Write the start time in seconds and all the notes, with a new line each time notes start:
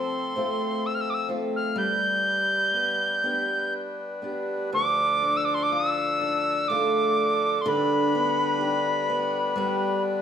Already playing: F3 A3 C4 A4 C6
0.36 A3 C4 F4
0.86 E6
0.95 F6
1.01 E6
1.10 D6
1.14 E6
1.28 A3 C4 F4
1.56 F6
1.76 G3 D4 B4 G6
2.74 B3
3.23 B3 D4 G4
4.22 B3 D4 G4
4.71 D2 F3 D4 A4 D6
5.24 D4
5.37 E6
5.45 D6
5.54 C6
5.63 D6
5.72 F4 E6
6.21 D4
6.68 A3 D4 F4 D6
7.61 C6
7.66 D3 G3 B4 B5
8.15 B3
8.61 G4
9.10 B3
9.56 G3 B3 G4